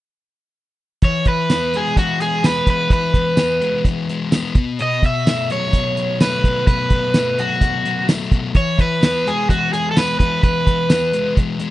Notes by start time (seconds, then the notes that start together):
1.02 E3 C#5, kick, closed hi-hat
1.25 E3 B4, kick, closed hi-hat
1.50 B3, snare, closed hi-hat, tambourine
1.74 G#3 G#4, closed hi-hat
1.97 E3 F#4, kick, closed hi-hat
2.20 G#3 G#4, closed hi-hat
2.43 B3 B4, snare, closed hi-hat, tambourine
2.67 E3 B4, kick, closed hi-hat
2.90 E3 B4, kick, closed hi-hat
3.14 E3, kick, closed hi-hat
3.37 B3, snare, closed hi-hat, tambourine
3.61 G#3, closed hi-hat
3.85 E3, kick, closed hi-hat
4.09 G#3, closed hi-hat
4.32 B3, snare, closed hi-hat, tambourine
4.55 B2, kick, closed hi-hat
4.79 B2 D#5, closed hi-hat
5.03 B2 E5, kick, closed hi-hat
5.27 A3, snare, closed hi-hat, tambourine
5.50 F#3 C#5, closed hi-hat
5.73 B2, kick, closed hi-hat
5.97 F#3, closed hi-hat
6.20 A3 B4, snare, closed hi-hat, tambourine
6.44 B2, kick, closed hi-hat
6.67 B2 B4, kick, closed hi-hat
6.90 B2, kick, closed hi-hat
7.14 A3, snare, closed hi-hat, tambourine
7.39 F#3 F#4, closed hi-hat
7.61 B2, kick, closed hi-hat
7.85 F#3, closed hi-hat
8.08 A3, snare, closed hi-hat, tambourine
8.31 B2, kick, closed hi-hat
8.55 E3 C#5, kick, closed hi-hat
8.78 E3 B4, kick, closed hi-hat
9.01 B3, snare, closed hi-hat, tambourine
9.25 G#3 G#4, closed hi-hat
9.49 E3 F#4, kick, closed hi-hat
9.72 G#3 G#4, closed hi-hat
9.91 A4
9.96 B3 B4, snare, closed hi-hat, tambourine
10.19 E3 B4, kick, snare, closed hi-hat
10.43 E3 B4, kick, closed hi-hat
10.66 E3, kick, closed hi-hat
10.89 B3, snare, closed hi-hat, tambourine
11.13 G#3, closed hi-hat
11.36 E3, kick, closed hi-hat
11.60 G#3, closed hi-hat